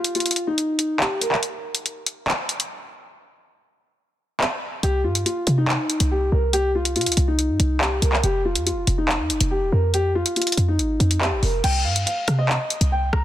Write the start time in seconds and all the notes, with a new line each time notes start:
Already playing: F4
0.04 closed hi-hat
0.15 F4, closed hi-hat
0.20 closed hi-hat
0.26 closed hi-hat
0.31 closed hi-hat
0.36 closed hi-hat
0.47 D#4
0.58 closed hi-hat
0.79 closed hi-hat
1.00 G4, clap
1.21 A#4, closed hi-hat
1.32 clap
1.43 closed hi-hat
1.75 closed hi-hat
1.86 closed hi-hat
2.06 closed hi-hat
2.28 clap
2.49 closed hi-hat
2.60 closed hi-hat
4.41 clap
4.83 C2 G4, closed hi-hat
5.04 G2 F4
5.15 closed hi-hat
5.26 F4, closed hi-hat
5.47 C3, closed hi-hat
5.58 D#4
5.68 clap
5.90 closed hi-hat
6.00 C2, closed hi-hat
6.11 G4
6.32 C2 A#4
6.53 G4, closed hi-hat
6.75 F4
6.85 closed hi-hat
6.96 C3 F4, closed hi-hat
7.01 closed hi-hat
7.06 C2, closed hi-hat
7.12 closed hi-hat
7.17 C2, closed hi-hat
7.28 D#4
7.39 closed hi-hat
7.49 G2
7.60 C2, closed hi-hat
7.81 G4, clap
8.02 C2 A#4, closed hi-hat
8.13 clap
8.23 F1 G4, closed hi-hat
8.45 F4
8.55 F2, closed hi-hat
8.66 F4, closed hi-hat
8.71 F1
8.87 F1, closed hi-hat
8.98 D#4
9.09 clap
9.19 F2
9.30 F1, closed hi-hat
9.41 F1, closed hi-hat
9.51 G4
9.62 D#1
9.72 F2 A#4
9.94 G4, closed hi-hat
10.15 F4
10.26 closed hi-hat
10.36 F4, closed hi-hat
10.42 closed hi-hat
10.47 closed hi-hat
10.52 closed hi-hat
10.57 F2, closed hi-hat
10.68 D#4
10.79 G#1, closed hi-hat
11.00 F2, closed hi-hat
11.11 closed hi-hat
11.21 G4, clap
11.32 G#1
11.43 F1 A#4, open hi-hat
11.64 C2 G5, closed hi-hat, crash
11.85 G2 F5
11.96 closed hi-hat
12.06 F5, closed hi-hat
12.28 C3, cross-stick, closed hi-hat
12.39 D#5
12.49 clap
12.70 closed hi-hat
12.81 C2, closed hi-hat
12.92 G5
13.13 C2 A#5, cross-stick